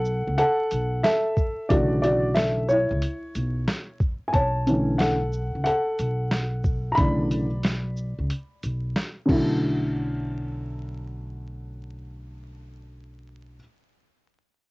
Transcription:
0.00 0.23 B1 loud
0.00 0.35 A4 medium
0.00 0.36 F#5 medium
0.05 shaker medium
0.27 0.37 C#2 medium
0.38 1.01 A4 medium
0.38 1.06 F#5 medium
0.38 closed hi-hat medium
0.71 1.01 B1 medium
0.71 closed hi-hat medium
0.71 shaker medium
1.03 1.67 A4 medium
1.03 1.72 E5 medium
1.03 snare loud
1.03 closed hi-hat medium
1.37 kick medium
1.37 shaker soft
1.69 2.87 B1 medium
1.69 2.65 C#3 soft
1.69 2.65 D3 soft
1.69 2.65 E3 soft
1.69 2.65 A3 soft
1.69 2.01 F#4 medium
1.69 2.00 D5 medium
1.69 kick loud
1.69 closed hi-hat medium
2.02 2.34 F#4 medium
2.02 2.37 D5 medium
2.02 closed hi-hat soft
2.02 shaker soft
2.35 2.67 A4 medium
2.35 2.66 E5 medium
2.35 snare loud
2.35 closed hi-hat medium
2.69 3.98 E4 medium
2.69 3.97 C#5 medium
2.69 shaker soft
2.91 3.01 C#2 medium
3.02 closed hi-hat medium
3.35 3.65 B1 medium
3.35 closed hi-hat medium
3.35 shaker medium
3.68 snare loud
3.68 closed hi-hat medium
4.00 kick medium
4.00 shaker soft
4.28 4.33 G#5 medium
4.33 5.50 B1 loud
4.33 4.96 C#5 medium
4.33 4.95 A5 medium
4.33 kick loud
4.33 closed hi-hat medium
4.67 5.14 D3 soft
4.67 5.15 E3 soft
4.67 5.15 A3 soft
4.67 5.15 C#4 medium
4.67 closed hi-hat soft
4.67 shaker soft
4.98 5.62 A4 medium
4.98 5.62 F#5 medium
4.98 snare loud
4.98 closed hi-hat medium
5.32 shaker medium
5.55 5.65 C#2 medium
5.64 6.89 A4 medium
5.64 6.96 F#5 medium
5.64 closed hi-hat medium
5.99 6.94 B1 medium
5.99 closed hi-hat medium
5.99 shaker medium
6.31 snare loud
6.31 closed hi-hat medium
6.64 kick medium
6.64 shaker soft
6.92 6.97 A#5 medium
6.92 8.90 B5 medium
6.97 8.14 B1 medium
6.97 7.46 C#3 medium
6.97 7.45 D3 soft
6.97 7.45 E3 soft
6.97 7.45 A3 soft
6.97 8.92 D5 medium
6.97 kick loud
6.97 closed hi-hat medium
7.31 closed hi-hat soft
7.31 shaker soft
7.63 snare loud
7.63 closed hi-hat medium
7.97 shaker medium
8.19 8.29 C#2 medium
8.30 closed hi-hat medium
8.63 8.93 B1 medium
8.63 closed hi-hat soft
8.63 shaker soft
8.96 snare loud
8.96 closed hi-hat medium
9.26 13.58 B1 medium
9.26 13.55 D3 medium
9.26 13.56 F#3 medium
9.26 13.58 A3 medium
9.26 kick medium
9.26 crash medium
9.30 13.59 C#4 medium
9.30 13.60 E4 medium

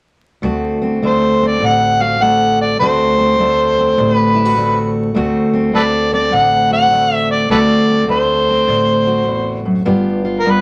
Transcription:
0.42 1.02 D2 medium
0.42 1.57 D2 medium
0.42 1.03 A3 medium
0.42 0.81 C4 medium
0.42 2.00 F#4 medium
0.82 1.41 C4 medium
1.02 1.60 D2 medium
1.02 2.21 A3 medium
1.02 1.48 C5 medium
1.41 2.81 C4 medium
1.47 1.68 D5 medium
1.60 2.74 A1 medium
1.60 2.20 D2 medium
1.66 2.04 F#5 loud
2.01 2.81 F#4 medium
2.01 2.24 F5 medium
2.20 2.80 D2 medium
2.20 2.80 A3 medium
2.20 2.60 F#5 loud
2.62 2.79 D5 medium
2.80 3.93 D2 medium
2.80 3.38 D2 medium
2.80 3.39 A3 medium
2.80 3.18 C4 medium
2.80 4.35 F#4 medium
2.80 4.13 C5 medium
3.18 3.77 C4 medium
3.39 3.97 D2 medium
3.39 4.57 A3 medium
3.77 5.16 C4 medium
3.97 5.11 A1 medium
3.97 4.57 D2 medium
4.13 4.90 B4 medium
4.35 4.45 E4 medium
4.45 5.15 F#4 medium
4.57 5.14 D2 medium
4.57 5.14 A3 medium
5.14 5.73 D2 medium
5.14 6.29 D2 medium
5.14 5.74 A3 medium
5.14 5.53 C4 medium
5.14 6.69 F#4 medium
5.53 6.12 C4 medium
5.74 6.33 D2 medium
5.74 6.91 A3 medium
5.74 5.81 A4 medium
5.74 5.83 B4 medium
5.74 6.10 D5 medium
6.13 7.48 C4 medium
6.13 6.36 D5 medium
6.33 7.47 A1 medium
6.33 6.90 D2 medium
6.33 6.72 F#5 loud
6.71 7.48 F#4 medium
6.71 7.15 F#5 loud
6.91 7.49 D2 medium
6.91 7.48 A3 soft
7.15 7.27 E5 loud
7.31 7.50 D5 medium
7.49 8.63 D2 medium
7.49 8.07 D2 medium
7.49 8.07 A3 medium
7.49 7.88 C4 medium
7.49 9.06 F#4 medium
7.49 7.58 A4 medium
7.49 7.58 B4 medium
7.49 8.06 D5 medium
7.89 8.48 C4 medium
8.08 8.67 D2 medium
8.08 9.83 A3 medium
8.08 9.62 C5 medium
8.49 9.84 C4 medium
8.68 9.82 A1 medium
8.68 9.26 D2 medium
9.07 9.84 F#4 medium
9.27 9.65 E2 medium
9.65 9.85 F#2 medium
9.85 10.61 G1 medium
9.85 10.44 G2 medium
9.85 10.45 B3 medium
9.85 10.24 F4 medium
9.85 10.61 G4 medium
10.25 10.61 F4 medium
10.40 10.52 A#4 medium
10.45 10.61 G2 medium
10.45 10.61 B3 medium
10.50 10.61 B4 medium

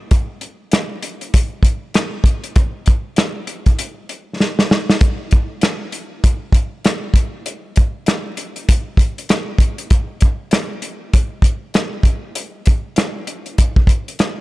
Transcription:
0.11 kick loud
0.11 closed hi-hat medium
0.41 closed hi-hat medium
0.72 cross-stick medium
0.72 snare loud
0.72 closed hi-hat medium
1.03 closed hi-hat medium
1.21 closed hi-hat medium
1.34 kick loud
1.34 closed hi-hat loud
1.63 kick medium
1.63 closed hi-hat medium
1.94 cross-stick loud
1.94 snare loud
1.94 closed hi-hat medium
2.24 kick medium
2.24 closed hi-hat medium
2.44 closed hi-hat medium
2.56 kick loud
2.56 closed hi-hat medium
2.86 kick loud
2.86 closed hi-hat medium
3.16 cross-stick medium
3.16 snare loud
3.16 closed hi-hat medium
3.47 closed hi-hat medium
3.66 kick medium
3.66 closed hi-hat soft
3.79 closed hi-hat loud
4.09 closed hi-hat medium
4.40 snare medium
4.59 snare medium
4.71 snare medium
4.90 snare medium
5.01 kick loud
5.01 closed hi-hat medium
5.31 kick medium
5.31 closed hi-hat medium
5.61 cross-stick medium
5.61 snare loud
5.61 closed hi-hat medium
5.92 closed hi-hat medium
6.24 kick loud
6.24 closed hi-hat loud
6.52 kick medium
6.52 closed hi-hat medium
6.85 cross-stick medium
6.85 snare loud
6.85 closed hi-hat medium
7.14 kick medium
7.14 closed hi-hat medium
7.46 closed hi-hat medium
7.76 kick medium
7.76 closed hi-hat medium
8.06 cross-stick medium
8.06 snare loud
8.06 closed hi-hat medium
8.37 closed hi-hat medium
8.56 closed hi-hat medium
8.69 kick loud
8.69 closed hi-hat loud
8.97 kick medium
8.97 closed hi-hat medium
9.18 closed hi-hat medium
9.29 cross-stick loud
9.29 snare loud
9.29 closed hi-hat medium
9.58 kick medium
9.58 closed hi-hat medium
9.78 closed hi-hat medium
9.90 kick loud
9.90 closed hi-hat medium
10.21 kick medium
10.21 closed hi-hat medium
10.51 cross-stick medium
10.51 snare loud
10.51 closed hi-hat medium
10.82 closed hi-hat medium
11.13 kick loud
11.13 closed hi-hat loud
11.42 kick medium
11.42 closed hi-hat medium
11.74 cross-stick medium
11.74 snare loud
11.74 closed hi-hat medium
12.03 kick medium
12.03 closed hi-hat medium
12.35 closed hi-hat medium
12.66 kick medium
12.66 closed hi-hat medium
12.96 cross-stick medium
12.96 snare loud
12.96 closed hi-hat medium
13.27 closed hi-hat medium
13.46 closed hi-hat soft
13.58 kick loud
13.58 closed hi-hat loud
13.76 kick loud
13.87 kick medium
13.87 closed hi-hat medium
14.08 closed hi-hat medium
14.19 cross-stick medium
14.19 snare loud
14.19 closed hi-hat medium

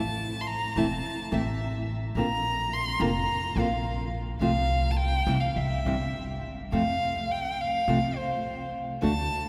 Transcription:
0.00 0.71 A1 medium
0.00 0.43 A5 loud
0.41 0.49 C6 medium
0.47 0.79 A#5 loud
0.76 0.99 E1 medium
0.76 0.85 E3 medium
0.76 0.85 A3 medium
0.76 0.86 C4 medium
0.76 0.86 E4 medium
0.76 1.35 A5 medium
1.32 2.12 A1 medium
1.32 1.41 E3 medium
1.32 1.41 A3 medium
1.32 1.41 C4 medium
1.32 1.41 E4 medium
1.32 1.89 E5 medium
2.15 2.96 A#1 medium
2.15 2.25 D3 medium
2.15 2.25 A#3 medium
2.15 2.26 C4 medium
2.15 2.26 F4 medium
2.15 2.75 A#5 loud
2.73 3.03 C6 loud
2.99 3.24 F1 loud
2.99 3.09 D3 medium
2.99 3.09 A#3 medium
2.99 3.09 C4 medium
2.99 3.09 F4 loud
2.99 3.61 A#5 loud
3.56 4.36 A#1 medium
3.56 3.65 D3 medium
3.56 3.66 A#3 medium
3.56 3.66 C4 medium
3.56 3.66 F4 loud
3.56 4.14 F5 medium
4.41 5.22 C2 medium
4.41 4.50 C3 medium
4.41 4.50 F3 medium
4.41 4.50 A3 medium
4.41 4.50 C4 medium
4.41 4.50 F4 medium
4.41 4.92 F5 loud
4.91 4.99 A5 medium
4.97 5.41 G5 loud
5.27 5.51 C2 medium
5.27 5.36 C3 medium
5.27 5.36 E3 medium
5.27 5.36 G3 medium
5.27 5.36 C4 medium
5.27 5.36 E4 loud
5.40 5.58 F5 medium
5.56 5.80 C2 medium
5.56 6.44 E5 medium
5.85 6.68 G1 medium
5.85 5.95 C3 medium
5.85 5.95 E3 medium
5.85 5.95 G3 medium
5.85 5.95 C4 medium
5.85 5.95 E4 medium
6.72 6.97 F2 medium
6.72 6.82 C3 medium
6.72 6.82 F3 medium
6.72 6.82 A3 medium
6.72 6.82 C4 medium
6.72 6.82 F4 medium
6.72 7.33 F5 loud
7.32 7.63 G5 medium
7.61 8.18 F5 loud
7.88 8.12 C2 medium
7.88 7.97 C3 medium
7.88 7.98 F3 medium
7.88 7.98 A3 medium
7.88 7.98 C4 medium
7.88 7.98 F4 medium
8.17 8.74 C5 medium
9.02 9.27 D2 medium
9.02 9.11 D3 medium
9.02 9.11 A3 medium
9.02 9.12 D4 medium
9.02 9.12 F#4 medium
9.02 9.49 A5 loud

